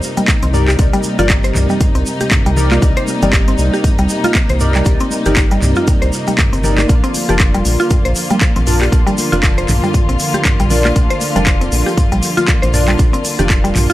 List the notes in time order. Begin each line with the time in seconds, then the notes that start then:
Already playing: C3 G3 A#3 D#4
0.03 muted conga, shaker
0.17 G3, closed hi-hat, high conga, shaker
0.28 kick, clap, closed hi-hat, shaker
0.43 C2 C4, closed hi-hat, high conga, low conga, shaker
0.53 D#4 G4 A#4 D5, mid tom, muted conga, shaker
0.68 G4, clap, shaker
0.79 C2 D#4 G4 A#4 D5, kick, closed hi-hat, shaker
0.93 G3, closed hi-hat, muted conga, shaker
1.03 high conga, shaker
1.19 G1 D#4 F4 G4 A#4 D5, closed hi-hat, low conga, shaker
1.29 kick, clap, closed hi-hat, muted conga, shaker
1.44 C5, closed hi-hat, shaker
1.55 C2, clap, mid tom, high conga, low conga, shaker
1.69 G3, muted conga, shaker
1.81 kick, closed hi-hat, mid tom, shaker
1.95 C2 C4, closed hi-hat, shaker
2.06 muted conga, shaker
2.20 G4, closed hi-hat, high conga, shaker
2.31 kick, clap, closed hi-hat, mid tom, shaker
2.46 C2 G3, closed hi-hat, shaker
2.56 D#4 G4 A#4 D5, muted conga, low conga, shaker
2.71 F4, clap, high conga, shaker
2.82 C2 D#4 G4 A#4 D5, kick, closed hi-hat, shaker
2.97 C5, closed hi-hat, muted conga, shaker
3.08 high conga, shaker
3.22 G1 G3 D#4 G4 A#4 D5, closed hi-hat, low conga, shaker
3.33 kick, clap, closed hi-hat, shaker
3.48 C4, closed hi-hat, shaker
3.58 C2, high conga, shaker
3.73 G4, muted conga, shaker
3.84 kick, closed hi-hat, mid tom, shaker
3.99 C2 G3, closed hi-hat, shaker
4.09 muted conga, shaker
4.24 F4, closed hi-hat, high conga, shaker
4.35 kick, clap, closed hi-hat, shaker
4.49 C2 C5, closed hi-hat, high conga, low conga, shaker
4.60 D#4 G4 A#4 D5, mid tom, muted conga, shaker
4.75 G3, clap, shaker
4.85 C2 D#4 G4 A#4 D5, kick, closed hi-hat, shaker
5.00 C4, closed hi-hat, muted conga, shaker
5.11 high conga, shaker
5.26 G1 D#4 G4 A#4 D5, closed hi-hat, low conga, shaker
5.37 kick, clap, closed hi-hat, muted conga, shaker
5.51 G3, closed hi-hat, shaker
5.62 C2, clap, mid tom, high conga, low conga, shaker
5.75 F4, muted conga, shaker
5.87 kick, closed hi-hat, mid tom, shaker
6.02 C2 C5, closed hi-hat, shaker
6.13 muted conga, shaker
6.27 G3, closed hi-hat, high conga, shaker
6.38 kick, clap, closed hi-hat, mid tom, shaker
6.53 G1 C4, closed hi-hat, shaker
6.63 D#4 G4 A#4 D5, muted conga, low conga, shaker
6.78 G4, clap, high conga, shaker
6.89 A#1 D3 F3 D4 F4 A#4 D5, kick, closed hi-hat, shaker
7.04 C4, closed hi-hat, muted conga, shaker
7.14 open hi-hat, high conga, shaker
7.29 F1 D4 F4 G4 A#4 D5, closed hi-hat, low conga, shaker
7.40 kick, clap, closed hi-hat, shaker
7.54 G3, closed hi-hat, shaker
7.65 A#1, open hi-hat, high conga, shaker
7.80 F4, muted conga, shaker
7.90 kick, closed hi-hat, mid tom, shaker
8.05 A#1 C5, closed hi-hat, shaker
8.15 open hi-hat, muted conga, shaker
8.30 G3, closed hi-hat, high conga, shaker
8.41 kick, clap, closed hi-hat, shaker
8.56 A#1 C4, closed hi-hat, high conga, low conga, shaker
8.67 D4 F4 A#4 D5, mid tom, open hi-hat, muted conga, shaker
8.82 G4, clap, shaker
8.92 A#1 D4 F4 A#4 D5, kick, closed hi-hat, shaker
9.07 G3, closed hi-hat, muted conga, shaker
9.18 open hi-hat, high conga, shaker
9.32 F1 D4 F4 A#4 D5, closed hi-hat, low conga, shaker
9.43 kick, clap, closed hi-hat, muted conga, shaker
9.58 C5, closed hi-hat, shaker
9.69 A#1, clap, mid tom, open hi-hat, high conga, low conga, shaker
9.83 G3, muted conga, shaker
9.94 kick, closed hi-hat, mid tom, shaker
10.09 A#1 C4, closed hi-hat, shaker
10.19 open hi-hat, muted conga, shaker
10.34 G4, closed hi-hat, high conga, shaker
10.45 kick, clap, closed hi-hat, mid tom, shaker
10.60 A#1 G3, closed hi-hat, shaker
10.70 D4 F4 A#4 D5, open hi-hat, muted conga, low conga, shaker
10.85 F4, clap, high conga, shaker
10.96 A#1 D4 F4 A#4 D5, kick, closed hi-hat, shaker
11.10 C5, closed hi-hat, muted conga, shaker
11.21 open hi-hat, high conga, shaker
11.36 F1 G3 D4 F4 A#4 D5, closed hi-hat, low conga, shaker
11.47 kick, clap, closed hi-hat, muted conga, shaker
11.61 C4, closed hi-hat, shaker
11.72 A#1, open hi-hat, high conga, shaker
11.86 G4, muted conga, shaker
11.98 kick, closed hi-hat, mid tom, shaker
12.12 A#1 G3, closed hi-hat, shaker
12.23 open hi-hat, muted conga, shaker
12.37 F4, closed hi-hat, high conga, shaker
12.48 kick, clap, closed hi-hat, shaker
12.62 A#1 C5, closed hi-hat, high conga, low conga, shaker
12.74 D4 F4 A#4 D5, mid tom, open hi-hat, muted conga, shaker
12.87 G3, clap, shaker
12.99 A#1 D4 F4 A#4 D5, kick, closed hi-hat, shaker
13.13 C4, closed hi-hat, muted conga, shaker
13.25 open hi-hat, high conga, shaker
13.39 F1 D4 F4 G4 A#4 D5, closed hi-hat, low conga, shaker
13.50 kick, clap, closed hi-hat, shaker
13.64 G3, closed hi-hat, shaker
13.76 A#1, clap, mid tom, open hi-hat, high conga, low conga, shaker
13.90 F4, closed hi-hat, shaker